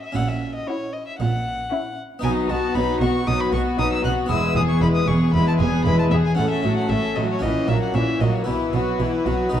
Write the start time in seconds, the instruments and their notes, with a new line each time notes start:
Already playing: harpsichord C#4 E4 F#4
0.03 violin E5
0.12 harpsichord C#4 E4 F#4, violin F#5
0.16 double bass section A#1, cello section A#2, harpsichord A#2
0.28 violin E5
0.55 violin D#5
0.67 viola section C#4, violin section E4 F#4, violin C#5
0.93 violin D#5
1.07 violin E5
1.19 double bass section A#1, cello section A#2, harpsichord A#2, violin F#5
1.71 viola section C#4, violin section E4 F#4
2.19 double bass section B1, cello section B2, viola section F#3, harpsichord B3 D#4 F#4, violin section B4, violin G#5
2.24 harpsichord B2, violin section D#4
2.49 double bass section B1, cello section B2, harpsichord B2, viola section B3, violin section F#4, violin A5
2.75 double bass section B1, cello section B2, harpsichord B2, viola section F#3, violin section D#4 B4, violin B5
3.00 double bass section B1, cello section B2, harpsichord B2, viola section B3, violin section F#4, violin C#6
3.27 double bass section B1, cello section B2, harpsichord B2, viola section F#3, violin section D#4 B4, violin D#6
3.40 violin B5
3.52 double bass section B1, harpsichord B2, cello section B2, viola section B3, violin section F#4, violin C#6
3.78 double bass section B1, harpsichord B2, cello section B2, viola section F#3, violin section D#4 B4, violin D#6
3.93 violin E6
4.04 double bass section B1, harpsichord B2, cello section B2, viola section B3, violin section F#4, violin F#6
4.26 double bass section E1, harpsichord B3 E4 G#4, violin section E4 B4
4.30 harpsichord E2, cello section E2, viola section G#3, violin E6
4.55 double bass section E1, harpsichord E2, cello section E2, viola section B3, violin section G#4, violin D#6
4.69 violin C#6
4.81 double bass section E1, harpsichord E2, cello section E2, viola section G#3, violin section E4 B4, violin B5
4.95 violin D#6
5.07 double bass section E1, harpsichord E2, cello section E2, viola section B3, violin section G#4, violin C#6
5.33 double bass section E1, cello section E2, harpsichord E2, viola section G#3, violin section E4 B4, violin B5
5.48 violin A5
5.59 double bass section E1, cello section E2, harpsichord E2, viola section B3, violin section G#4, violin G#5
5.85 double bass section E1, cello section E2, harpsichord E2, viola section G#3, violin section E4 B4, violin B5
5.99 violin A5
6.11 double bass section E1, cello section E2, harpsichord E2, viola section B3, violin section G#4, violin E5
6.25 violin G#5
6.35 double bass section A1, cello section A2, harpsichord A2 C#4 F#4, viola section A3, violin section C#4 A4, violin F#5
6.50 violin E5
6.63 double bass section A1, harpsichord A2, cello section A2, viola section F#3, violin section A3 F#4
6.77 violin F#5
6.89 double bass section A1, harpsichord A2, cello section A2, viola section A3, violin section C#4 A4, violin E5
7.15 double bass section A1, harpsichord A2, cello section A2, viola section F#3, violin section A3 F#4, violin D#5
7.30 violin C#5
7.39 double bass section A#1, harpsichord A#2 C#4 F#4, cello section A#2, viola section E3, violin section C#4 E4, violin D#5
7.68 double bass section A#1, harpsichord A#2, cello section A#2, viola section F#3, violin section A#3 F#4, violin E5
7.82 violin F#5
7.94 double bass section A#1, harpsichord A#2, cello section A#2, viola section E3, violin section C#4 E4, violin E5
8.20 double bass section A#1, cello section A#2, harpsichord A#2, viola section F#3, violin section A#3 F#4, violin D#5
8.34 violin C#5
8.44 double bass section B1, harpsichord B2 E4 F#4, cello section B2, viola section E3, violin section E4, violin B4
8.73 double bass section B1, cello section B2, harpsichord B2, viola section F#3, violin section F#4
8.99 double bass section B1, cello section B2, harpsichord B2, viola section E3, violin section E4
9.25 double bass section B1, cello section B2, harpsichord B2, viola section F#3, violin section F#4
9.49 double bass section B1, cello section B2, harpsichord B2 D#4 F#4, viola section D#3, violin section D#4 B4